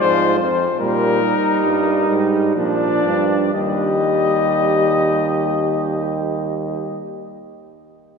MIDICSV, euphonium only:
0, 0, Header, 1, 2, 480
1, 0, Start_track
1, 0, Key_signature, -3, "major"
1, 0, Tempo, 826446
1, 465, Time_signature, 3, 2, 24, 8
1, 959, Tempo, 904977
1, 1439, Tempo, 980392
1, 1919, Tempo, 1022147
1, 4100, End_track
2, 0, Start_track
2, 0, Title_t, "Euphonium"
2, 0, Program_c, 0, 58
2, 0, Note_on_c, 0, 44, 81
2, 227, Note_on_c, 0, 41, 81
2, 236, Note_off_c, 0, 44, 0
2, 395, Note_off_c, 0, 41, 0
2, 466, Note_on_c, 0, 46, 85
2, 777, Note_off_c, 0, 46, 0
2, 959, Note_on_c, 0, 43, 77
2, 1179, Note_off_c, 0, 43, 0
2, 1194, Note_on_c, 0, 44, 74
2, 1434, Note_off_c, 0, 44, 0
2, 1439, Note_on_c, 0, 46, 69
2, 1669, Note_off_c, 0, 46, 0
2, 1674, Note_on_c, 0, 43, 77
2, 1914, Note_off_c, 0, 43, 0
2, 1920, Note_on_c, 0, 39, 76
2, 3557, Note_off_c, 0, 39, 0
2, 4100, End_track
0, 0, End_of_file